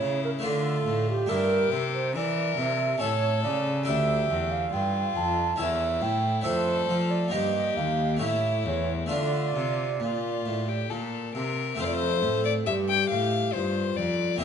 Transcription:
Already playing: A3 E4 G4 C#5
0.01 C#3
0.24 A#4
0.39 A3 D4 F4
0.43 D3 F4 A4
0.86 A2
1.10 G4
1.26 G2 D4 E4 G4 A#4
1.72 C3
1.94 C5
2.15 E3 A#4 D5
2.57 C3 E5
2.98 A2 C#4 A4 C#5
3.44 C#3 D5
3.84 D2 D4 G4 A4 E5
3.88 D2
4.30 E2
4.51 F5
4.72 G2 F4 G5
5.16 F2 A5
5.56 E2 C#4 E4 A4
5.61 E5
6.02 A2 G5
6.41 F2 A3 D4 A4 C5
6.46 F2 A4
6.89 F3
7.11 D5
7.28 A#3 D#4 G4 D#5
7.33 G2 G4
7.77 D#2 F5
8.17 A3 C#4 G4 E5
8.21 A2 E4
8.65 E2 C#5
9.06 D3 A3 D4 F4
9.11 D3 D5
9.55 C3
10.00 A#2 F4
10.46 A2
10.68 G4
10.90 A#2 A4
11.35 C3 A#4
11.75 A3 C4 F4
11.79 F2 A4 C5
11.86 D5
11.93 C5
12.23 A2
12.45 D5
12.66 G2 G4 E5
12.89 G5
13.09 A2 F5
13.53 G2 F4 C5
13.96 F2 D5
14.36 A#3 C4 G4
14.41 E2 E5

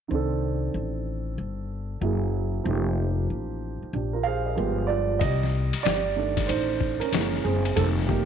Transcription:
0.08 C2 D#3 C4
0.13 D4 A4
0.74 A1
1.38 G1
2.01 F#1 F#3 A#3 E4 G#4
2.64 F1 F3 A3
2.68 D#4 G4
2.72 A#3
3.30 A1
3.82 muted upright bass stroke
3.93 A#1 D4 G4
4.13 F4 A#4
4.23 G4 G#4 C5 F5
4.46 A#4 D#5
4.55 G1 F3 G#3 B3 G4
4.87 F4 D5
5.19 C2 G4 D#5, kick, ride
5.43 snare
5.73 muted upright bass stroke, ride
5.83 G1 G4 D5, snare, hi-hat pedal, ride
6.16 D#3 A3 D4
6.37 kick, snare, ride
6.47 A1 D#4 C5, ride
6.81 kick
7.00 C#4 A#4, muted upright bass stroke, ride
7.12 F#1 E3 G#3 A#3, snare, hi-hat pedal, ride
7.34 snare
7.44 F#1 C4 G#4
7.65 ride
7.76 F1 D#3 G3 A#3 C4 A4, kick, ride
7.99 snare
8.07 A#3 G4, kick

